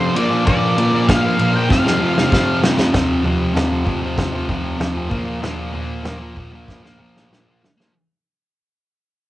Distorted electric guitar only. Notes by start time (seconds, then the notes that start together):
Already playing: F2 C3 F3
0.15 A#2 F3
0.19 A#3
0.30 F3 A#3
0.45 A#2 F3 A#3
0.77 A#2 F3 A#3
0.92 F3 A#3
1.38 A#2 F3 A#3
1.54 F3 A#3
1.69 F2 C3 F3
1.85 C3 F3
2.01 F2 C3 F3
2.16 C3 F3
2.31 F2 C3 F3
2.62 F2 C3 F3
2.77 C3 F3
2.93 F2 C3 F3
3.23 F2 C3 F3
3.54 F2 C3 F3
3.70 C3 F3
3.85 F2 C3 F3
4.02 C3 F3
4.33 C3 F3
4.47 F2 C3 F3
4.78 F2 C3 F3
4.93 C3 F3
5.09 A#2 F3 A#3
5.25 F3 A#3
5.41 A#2 F3 A#3
5.72 A#2 F3 A#3
6.04 A#2 F3
6.08 A#3
6.19 F3 A#3
6.35 A#2 F3 A#3
6.52 F3 A#3
6.83 F3 A#3
6.99 A#2 F3 A#3
7.30 A#2 F3 A#3
7.46 F3 A#3
7.62 muted distorted electric guitar stroke
7.77 F3 A#3